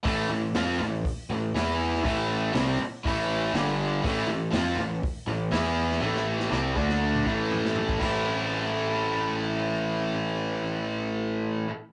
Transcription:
<<
  \new Staff \with { instrumentName = "Distorted electric guitar" } { \clef bass \time 4/4 \key a \minor \tempo 4 = 121 <a, e a>8 <a, e>8 <f c' f'>8 <a, e>8 r8 <a, e>8 <e b e'>4 | <a, e a>4 <c g c'>8 r8 <a, e a>4 <g, d g>4 | <a, e a>8 <a, e>8 <f c' f'>8 <a, e>8 r8 <a, e>8 <e b e'>4 | <a, e a>4 <c g c'>8 <d a d'>4 <a, e a>4. |
<a, e a>1~ | <a, e a>1 | }
  \new Staff \with { instrumentName = "Overdriven electric guitar" } { \clef bass \time 4/4 \key a \minor <a, e a>8 <a, e>8 <f c' f'>8 <a, e>8 r8 <a, e>8 <e b e'>4 | <a, e a>4 <c g c'>8 r8 <a, e a>4 <g, d g>4 | <a, e a>8 <a, e>8 <f c' f'>8 <a, e>8 r8 <a, e>8 <e b e'>4 | <a, e a>4 <c g c'>8 <d a d'>4 <a, e a>4. |
<a, e a c' e'>1~ | <a, e a c' e'>1 | }
  \new Staff \with { instrumentName = "Picked electric bass" } { \clef bass \time 4/4 \key a \minor a,,8 a,,8 f,8 a,,8 r8 a,,8 e,4 | a,,4 c,8 r8 a,,4 g,,4 | a,,8 a,,8 f,8 a,,8 r8 a,,8 e,4 | a,,4 c,8 d,4 a,,4. |
a,,1~ | a,,1 | }
  \new DrumStaff \with { instrumentName = "Drums" } \drummode { \time 4/4 <hho bd>4 <hho sn>8 sn8 <hho bd>4 <hho sn>8. sn16 | <hho bd>4 <hho sn>4 <hho bd>4 <hho sn>4 | <hho bd>4 <hho sn>8 sn8 <hho bd>4 <hho sn>8. sn16 | tommh16 sn8 sn16 sn8 bd16 sn16 r16 toml16 bd8 tomfh16 sn16 tomfh16 bd16 |
<cymc bd>4 r4 r4 r4 | r4 r4 r4 r4 | }
>>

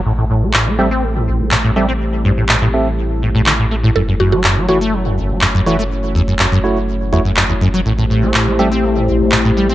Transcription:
<<
  \new Staff \with { instrumentName = "Analog synth pad" } { \time 4/4 \key a \lydian \tempo 4 = 123 << { <g' c''>1~ | <g' c''>1 | <fis' cis''>1~ | <fis' cis''>1 |
<g' c''>1 | } \\ { <a e'>1~ | <a e'>1~ | <a e'>1~ | <a e'>1 |
<a e'>1 | } >> }
  \new Staff \with { instrumentName = "Synth stab" } { \time 4/4 \key a \lydian r4. <c' g' a' e''>8 r4. <c' g' a' e''>8 | r4. <c' g' a' e''>8 r2 | r4. <a e' fis' cis''>8 r4. <a e' fis' cis''>8 | r4. <a e' fis' cis''>8 r8 <a e' fis' cis''>8 r4 |
r4. <c' g' a' e''>8 r2 | }
  \new Staff \with { instrumentName = "Synth pluck" } { \time 4/4 \key a \lydian r1 | r1 | a'16 r16 fis'16 fis'16 r8 fis'4. r4 | r1 |
r1 | }
  \new Staff \with { instrumentName = "Acid bass" } { \clef bass \time 4/4 \key a \lydian a,16 a,16 a,16 a16 a,16 a16 g16 c'16 a16 a,16 a,,16 a16 a,16 a,16 g16 c'16 | r8 g,16 a,16 a,16 a,16 r4 a,16 a,16 d16 a,16 a16 a,16 | fis,16 fis,16 fis,16 fis16 fis,16 fis16 e16 a16 fis16 fis,16 fis,,16 fis16 fis,16 fis,16 e16 a16 | r8 e,16 fis,16 fis,16 fis,16 r4 e,16 fis,16 fis,16 e,16 fis,16 fis16 |
a,16 a,16 a,16 a16 a,16 a16 g16 c'16 a16 a,16 a,,16 a16 a,16 a,16 g16 c'16 | }
  \new Staff \with { instrumentName = "Sub bass" } { \clef bass \time 4/4 \key a \lydian a,,1~ | a,,1 | fis,,1~ | fis,,1 |
a,,1 | }
  \new DrumStaff \with { instrumentName = "Drums" } \drummode { \time 4/4 r4 hc4 r4 hc4 | r4 hc4 r4 hc4 | r4 hc4 r4 hc4 | r4 hc4 r4 hc4 |
r4 hc4 r4 hc4 | }
>>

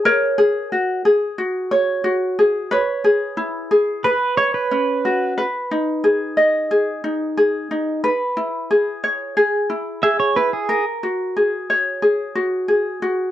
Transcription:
<<
  \new Staff \with { instrumentName = "Pedal steel guitar" } { \time 4/4 \key fis \mixolydian \tempo 4 = 90 r1 | r2 b'8 cis''16 b'4~ b'16 | r1 | r2. e''16 cis''16 b'16 gis'16~ |
gis'16 r2. r8. | }
  \new Staff \with { instrumentName = "Ukulele" } { \time 4/4 \key fis \mixolydian <ais' cis''>8 gis'8 fis'8 gis'8 fis'8 cis''8 fis'8 gis'8 | <b' cis''>8 gis'8 e'8 gis'8 b'8 cis''8 cis'8 fis'8 | b'8 dis'8 gis'8 dis''8 gis'8 dis'8 gis'8 dis'8 | b'8 e'8 gis'8 cis''8 gis'8 e'8 gis'8 e'8 |
ais'8 fis'8 gis'8 cis''8 gis'8 fis'8 gis'8 fis'8 | }
>>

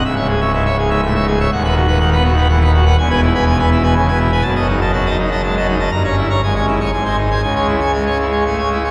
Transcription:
<<
  \new Staff \with { instrumentName = "Pipe organ" } { \time 3/4 \key cis \minor \tempo 4 = 122 e''16 <cis'' e''>16 gis'16 <cis'' e''>16 e''16 <cis'' e''>16 gis'16 <cis'' e''>16 e''16 <cis'' e''>16 gis'16 <cis'' e''>16 | fis''16 <b' fis''>16 fis'16 <b' fis''>16 fis''16 <b' fis''>16 fis'16 <b' fis''>16 fis''16 <b' fis''>16 fis'16 <b' fis''>16 | gis''16 <b' gis''>16 e'16 <b' gis''>16 gis''16 <b' gis''>16 e'16 <b' gis''>16 gis''16 <b' gis''>16 e'16 <b' gis''>16 | a''16 <dis'' a''>16 dis'16 <dis'' a''>16 a''16 <dis'' a''>16 dis'16 <dis'' a''>16 a''16 <dis'' a''>16 dis'16 <dis'' a''>16 |
bes''16 <des'' bes''>16 e'16 <des'' bes''>16 gis''16 <cis'' gis''>16 e'16 <cis'' gis''>16 gis''16 <bis' gis''>16 dis'16 <bis' gis''>16 | gis''16 <cis'' gis''>16 e'16 <cis'' gis''>16 gis''16 <cis'' gis''>16 e'16 <cis'' gis''>16 gis''16 <cis'' gis''>16 e'16 <cis'' gis''>16 | }
  \new Staff \with { instrumentName = "Pipe organ" } { \clef bass \time 3/4 \key cis \minor << { \tuplet 3/2 { cis,8 gis,8 r8 gis,8 r8 gis,8 a,8 gis,8 r8 } | \tuplet 3/2 { dis,8 dis8 r8 dis8 b8 dis8 e8 dis8 r8 } | \tuplet 3/2 { e,8 b,8 r8 b,8 b8 b,8 cis8 b,8 r8 } | \tuplet 3/2 { fis,8 fis8 r8 fis8 dis'8 fis8 gis8 fis8 r8 } |
\tuplet 3/2 { g,8 des'8 r8 gis,8 cis'8 r8 gis,8 dis'8 r8 } | \tuplet 3/2 { cis8 gis8 r8 gis8 cis'8 gis8 a8 gis8 r8 } | } \\ { cis,,2. | dis,,2. | e,,2. | fis,,2. |
g,,4 gis,,4 gis,,4 | cis,2. | } >> }
>>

